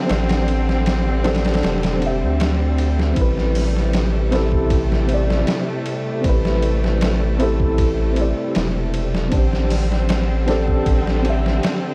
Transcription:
0.00 3.14 D3 medium
0.00 9.29 G3 medium
0.00 0.06 C4 loud
0.00 3.14 C4 loud
0.00 0.09 D4 medium
0.00 0.11 G4 medium
0.00 1.27 A4 loud
0.00 2.06 E5 medium
0.06 1.19 C4 medium
0.06 1.20 D4 medium
0.06 ride medium
0.10 1.63 A1 loud
0.10 1.21 G4 medium
0.10 snare loud
0.14 1.23 C5 medium
0.29 snare loud
0.29 ride medium
0.48 ride medium
0.69 snare soft
0.86 snare loud
0.86 ride medium
1.23 1.96 C4 medium
1.23 1.97 D4 medium
1.23 1.98 G4 medium
1.23 1.98 A4 loud
1.23 snare medium
1.23 ride medium
1.35 snare medium
1.35 ride medium
1.45 snare medium
1.45 ride medium
1.54 snare medium
1.54 ride medium
1.63 2.24 E1 loud
1.63 snare loud
1.63 ride medium
1.83 snare loud
1.83 ride medium
1.98 3.11 C4 medium
1.98 3.12 D4 medium
1.98 ride medium
2.04 3.13 G4 medium
2.04 3.15 E5 medium
2.22 3.14 D2 medium
2.40 snare loud
2.40 ride medium
2.78 ride medium
2.99 snare medium
3.13 5.44 A1 medium
3.13 9.28 C3 medium
3.13 9.28 A3 medium
3.13 4.26 C4 medium
3.13 4.27 E4 medium
3.13 kick loud
3.13 ride medium
3.19 4.29 G4 medium
3.19 4.30 B4 medium
3.38 snare soft
3.55 snare soft
3.55 open hi-hat medium
3.76 snare soft
3.93 snare loud
3.93 ride medium
4.31 5.04 C4 loud
4.31 5.05 E4 medium
4.31 5.06 G4 medium
4.31 5.06 A4 loud
4.31 snare soft
4.31 ride medium
4.52 kick medium
4.70 kick loud
4.70 ride medium
4.92 snare soft
5.06 6.19 C4 medium
5.06 6.20 E4 medium
5.06 ride medium
5.11 6.21 G4 medium
5.11 6.23 D5 medium
5.30 snare medium
5.47 snare loud
5.47 ride medium
5.86 ride medium
6.21 8.33 A1 loud
6.21 7.34 C4 medium
6.21 7.35 E4 medium
6.21 kick loud
6.21 ride medium
6.26 7.36 G4 medium
6.26 7.38 B4 medium
6.45 snare medium
6.63 ride medium
6.84 snare soft
7.01 snare loud
7.01 ride medium
7.38 8.11 C4 medium
7.38 8.12 E4 medium
7.38 8.13 G4 medium
7.38 8.14 A4 loud
7.38 ride medium
7.60 kick loud
7.78 kick loud
7.78 ride medium
8.13 9.26 C4 medium
8.13 9.27 E4 medium
8.13 ride medium
8.18 9.29 G4 medium
8.18 9.30 D5 medium
8.55 9.29 E1 medium
8.55 snare loud
8.55 ride medium
8.94 ride medium
9.15 snare medium
9.29 11.60 A1 loud
9.29 10.41 C4 medium
9.29 10.43 D4 medium
9.29 kick loud
9.29 ride medium
9.33 11.94 D3 medium
9.33 11.94 G3 medium
9.33 11.94 C4 medium
9.33 10.44 G4 medium
9.33 10.45 C5 medium
9.53 snare soft
9.70 snare soft
9.70 open hi-hat medium
9.92 snare soft
10.09 snare loud
10.09 ride medium
10.46 11.20 C4 loud
10.46 11.20 D4 medium
10.46 11.21 G4 medium
10.46 snare soft
10.46 ride medium
10.51 11.22 A4 loud
10.68 kick medium
10.86 kick loud
10.86 ride medium
11.07 snare soft
11.21 11.94 C4 medium
11.21 11.94 D4 medium
11.21 ride medium
11.27 11.94 G4 medium
11.27 11.94 E5 medium
11.46 snare medium
11.63 snare loud
11.63 ride medium

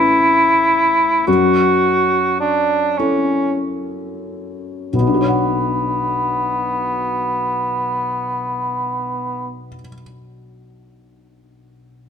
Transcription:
0.00 1.29 A1 soft
0.00 1.23 C#4 soft
0.00 1.23 E4 soft
0.00 1.26 E4 medium
0.00 1.24 B4 soft
1.27 2.95 F#2 soft
1.27 2.37 F#4 medium
2.40 3.00 D4 medium
2.98 3.60 C#4 soft
2.98 4.89 C#4 soft
2.98 4.90 E4 soft
2.98 4.90 A4 soft
4.93 9.66 B1 soft
4.93 9.58 B3 soft
5.00 9.74 B2 soft
5.07 9.80 D4 soft
5.14 9.87 F#4 soft
5.21 9.94 C#5 soft
5.28 10.01 F#5 soft

